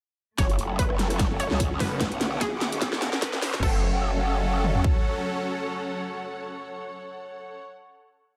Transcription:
0.38 wobble bass F#1, supersaw synth F#3 C#4 A4, string section A3, synth pluck C#5, kick, snare, closed hi-hat, riser
0.50 closed hi-hat
0.59 wobble bass F#1, string section F#5, closed hi-hat
0.75 synth pluck B4, string section C#5, kick, closed hi-hat
0.90 wobble bass F#1, cross-stick
0.99 snare, closed hi-hat
1.10 cross-stick, closed hi-hat
1.19 kick, snare, closed hi-hat
1.40 synth pluck C#5, closed hi-hat
1.51 wobble bass C#2, snare
1.60 kick, closed hi-hat
1.80 detuned saw bass F#1, synth pluck B4, snare, open hi-hat
2.01 wobble bass B1, supersaw synth D3 B3, kick, snare, closed hi-hat
2.12 closed hi-hat
2.19 wobble bass B1, string section D6, snare, closed hi-hat
2.41 synth pluck G#4, kick, snare, closed hi-hat
2.52 wobble bass B1
2.61 snare, closed hi-hat
2.72 closed hi-hat
2.82 kick, snare, closed hi-hat
2.93 snare
3.02 snare, closed hi-hat
3.13 snare
3.22 kick, snare, closed hi-hat
3.33 wobble bass B1, snare
3.42 snare, open hi-hat
3.54 detuned saw bass B1, snare
3.63 wobble bass F#1, supersaw synth F#3 C#4 A4, string section A4, synth pluck A4, kick, crash
3.69 string section C#5
3.76 string section F#5
4.64 mid tom
4.75 floor tom
4.84 kick

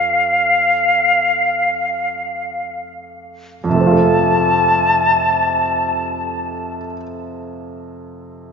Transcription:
Already playing: grand piano F2 A3 F4 C5, flute F5
3.64 grand piano F2, flute A5
3.70 grand piano C3
3.75 grand piano A3
3.81 grand piano C4
3.86 grand piano F4
3.91 grand piano A4

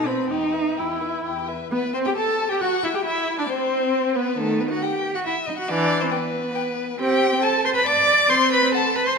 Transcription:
Already playing: cello B2
0.07 viola C4, violin B4 B5
0.29 cello E2, viola D#4, violin G4 G5
0.53 violin B4 E5
0.77 cello E2, viola E4, violin G4 G5
1.01 violin B4 E5
1.24 cello E2, violin G4 G5
1.48 violin B4 E5
1.71 violin B3 B4, viola B3, cello B3
1.93 violin C4 C5, viola C4, cello C4
2.05 violin G4 G5, viola G4, cello G4
2.16 viola A4, violin A4 A5, cello A4
2.49 viola G4, violin G4 G5, cello G4
2.60 viola F#4, cello F#4, violin F#4 F#5
2.84 violin E4 E5, cello E4, viola E4
2.94 viola G4, violin G4 G5, cello G4
3.04 violin E4 E5, cello E4, viola E4
3.38 violin D4 D5, viola D4, cello D4
3.49 violin C4 C5, cello C4, viola C4
4.14 violin B3 B4, cello B3, viola B3
4.37 viola D#3, cello A3, violin A4
4.60 cello B3, violin B4
4.70 cello F#4, violin F#5
4.82 cello G4, violin F#5 G5
5.15 cello F#4, violin F#5
5.24 cello E4, violin E5 F#5
5.46 cello D#4, violin D#5
5.58 cello F#4, violin F#5
5.68 viola E3, cello D4, violin D5
6.01 cello C4, violin C5
6.11 cello B3, violin B4 G5
6.55 violin G5
6.99 viola C4, cello G4, violin G5
7.42 cello A4, violin A5
7.65 cello C5, violin C6
7.75 cello B4, violin B5
7.85 cello D5, violin A5 D6
8.29 viola C4, cello C5, violin C6
8.52 cello B4, violin B5
8.74 cello A4, violin F#5 A5
8.96 cello B4, violin B5
9.06 cello C5, violin C6

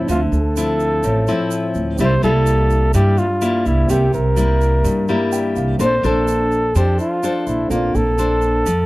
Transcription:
Already playing: nylon-string guitar F3 C4 E4, grand piano D4 C5
0.05 upright bass D2, nylon-string guitar D3, grand piano D4, shaker
0.10 flugelhorn F4, grand piano C5 E5
0.32 upright bass D2, flugelhorn A4, shaker
0.56 nylon-string guitar F3 C4 E4, shaker
0.80 shaker
1.03 upright bass A1, nylon-string guitar A2, shaker
1.27 nylon-string guitar F3 C4 E4, shaker
1.51 shaker
1.75 upright bass D2, shaker
1.96 upright bass C2, nylon-string guitar C3, grand piano C4 G4, shaker
2.00 nylon-string guitar G3 A#3 E4, grand piano A#3 E5, flugelhorn C5
2.23 upright bass C2, nylon-string guitar G3 A#3 E4, flugelhorn A4, shaker
2.46 shaker
2.70 shaker
2.94 nylon-string guitar G2 G3 A#3 E4, upright bass G2, flugelhorn G4, shaker
3.18 flugelhorn F4, shaker
3.41 nylon-string guitar G3 A#3 E4, shaker
3.66 upright bass C2, flugelhorn E4, shaker
3.87 upright bass C2, nylon-string guitar C3, grand piano C4 G4 A#4, flugelhorn G4, shaker
3.92 grand piano E5
4.13 upright bass C2, flugelhorn A#4, shaker
4.36 nylon-string guitar G3 A#3 E4, shaker
4.61 shaker
4.84 nylon-string guitar G2, upright bass G2, shaker
5.08 nylon-string guitar G3 A#3 E4, grand piano A#5, shaker
5.32 grand piano G5, shaker
5.56 upright bass C2, grand piano F5, shaker
5.78 upright bass A#1, nylon-string guitar A#3 D4 A4 C5, grand piano C4 A4, flugelhorn C5, shaker
5.83 grand piano D5
6.03 upright bass A#1, nylon-string guitar D4 A4 C5, flugelhorn A4, shaker
6.28 shaker
6.52 shaker
6.75 upright bass F2, nylon-string guitar F3 D4 A4 C5, flugelhorn G4, shaker
6.99 flugelhorn F4, shaker
7.23 nylon-string guitar D4 A4 C5, shaker
7.47 upright bass A#1, flugelhorn E4, shaker
7.68 upright bass A#1, nylon-string guitar A#3, grand piano C4 A4, flugelhorn F4, shaker
7.74 grand piano D5
7.95 upright bass A#1, flugelhorn A4, shaker
8.18 nylon-string guitar D4 A4 C5, shaker
8.42 shaker
8.66 upright bass F2, nylon-string guitar F3, shaker

